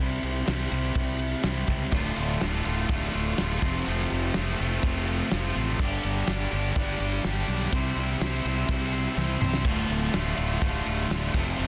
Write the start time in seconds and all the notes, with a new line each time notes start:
Already playing: C3
0.00 C2 G3 C4 E4 G4 C5
0.22 C2 C4 E4 G4 C5, ride
0.46 C2 C4 E4 G4 C5, snare, ride
0.70 C2 C4 E4 G4 C5, ride
0.95 C2, kick, ride
1.19 ride
1.43 C2 C3 G3 C4 E4 G4 C5, snare, ride
1.67 C#2 C4 E4 G4 C5, kick, ride
1.91 D1 D2 A2 D3 A3 F4, kick, crash
2.05 snare
2.16 D1 D3 A3 F4, ride
2.41 D1 D2 A2 D3 A3 F4, snare, ride
2.65 D1 D3 A3 F4, ride
2.89 A2 D3 A3 F4, kick, ride
3.13 D1 D3 A3 F4, ride
3.37 D1 D2 A2 D3 A3 F4, snare, ride
3.61 F1 F2 C3 F3 A3 C4 F4, kick, ride
3.85 F1 F2 C3 F3 A3 C4 F4, ride
3.99 snare
4.10 F1 F3 A3 C4 F4, ride
4.33 F1 F2 C3 F3 A3 C4 F4, snare, ride
4.58 F1 F3 A3 C4 F4, ride
4.83 F1 F3 A3 C4, kick, ride
4.88 F4
5.08 F3 A3 C4 F4, ride
5.30 F1 F2 C3 F3 A3 C4 F4, snare, ride
5.55 A1 F3 A3 C4 F4, ride
5.79 G1 G2 D3 G3 D4 G4, kick, crash
6.03 G1 G3 D4 G4, ride
6.26 G1 G2 D3 G3 D4 G4, snare, ride
6.50 G1 G3 D4 G4, ride
6.76 G1 D3 G3 D4 G4, kick, ride
7.00 G1 G3 D4 G4, ride
7.24 G1 G2 D3 G3 D4 G4, snare, ride
7.48 B1 G3 D4 G4, ride
7.71 C2 C3 G3 C4 E4 G4 C5, kick, ride
7.95 C2 C4 E4 G4 C5, ride
8.20 C2 C3 G3 C4 E4 G4 C5, snare, ride
8.44 C2 C4 E4 G4 C5, ride
8.67 C2 C4 E4 G4 C5, kick, ride
8.92 C4 E4 G4 C5, ride
9.15 C2 C3 G3 C4 E4 G4 C5, high tom
9.40 C2 C4 E4 G4 C5, mid tom
9.53 snare
9.63 D1 D2 A2 D3 A3 F4, kick, crash
9.78 snare
9.88 D1 D3 A3 F4, ride
10.13 D1 D2 A2 D3 A3 F4, snare, ride
10.37 D1 D3 A3 F4, ride
10.61 D1 A2 D3 A3 F4, kick, ride
10.85 D1 D3 A3 F4, ride
11.08 D1 D2 A2 D3 A3 F4, snare, ride
11.32 F1 F2 C3 F3 A3 C4 F4, kick, crash
11.56 F1 F2 C3 F3 A3 C4 F4